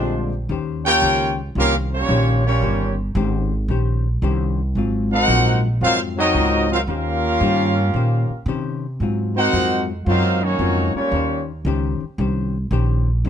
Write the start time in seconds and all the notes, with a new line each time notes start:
Already playing: A#1 A#2 D3 F3 G3 G#3 C4 D4 F4 G4 C5
0.49 D#2 D#3 C#4 G4 C5
0.85 A#3 C#4 F4 G4 A#4 C#5 G5
1.02 C#2 D#3 C#4 G4 C5
1.55 C2 D#3 A#3 C#4 F4 G4 C5
1.59 C#4 G4 A#4 F5
1.93 G3 A#3 C#4 F4 G4 C#5
2.09 A#1 D#3 C#4 G4 C5
2.46 G3 A#3 C#4 F4 G4 C#5
2.62 G1 D#3 C#4 G4 C5
3.15 G#1 D#3 C#4 G4 C5
3.68 A#1 D#3 C#4 G4 C5
4.22 C2 D#3 C#4 G4 C5
4.75 G#1 G#2 F#3 C4 F4
5.11 C4 D#4 F#4 A#4 C5 F#5
5.28 A#1 G#2 F#3 C4 F4
5.81 F2 G#2 F#3 C4 D#4 F4 A#4 C5 F5
6.18 F#3 C4 D#4 F#4 A#4 D#5
6.34 C#2 G#2 F#3 C4 F4
6.71 F#3 C4 D#4 F4 A#4 C5 F5
6.87 D#2 D#3 A#3 C#4 F4 G4 A#4 C5 F5
7.41 G2 D#3 C#4 G4 C5
7.94 A#2 D#3 C#4 G4 C5
8.29 muted upright bass stroke
8.46 C3 D#3 C#4 G4 C5
9.00 G#2 F#3 C4 F4
9.35 C4 D#4 F#4 A#4 C5 F#5
9.53 F2 G#2 F#3 C4 F4
10.06 F#2 G#2 F#3 C4 D#4 F4 A#4 C5 F5
10.41 D#3 F#3 A#3 C#4 D#4 F#4 C#5
10.59 F2 G#2 F#3 C4 F4
10.94 G3 A#3 C#4 F4 G4 C#5, muted upright bass stroke
11.12 D#2 D#3 C#4 G4
11.16 C5
11.65 C#2 D#3 C#4 G4 C5
12.00 muted upright bass stroke
12.18 C2 D#3 C#4 G4 C5
12.71 A#1 D#3 C#4 G4 C5
13.25 G1 D#3 C#4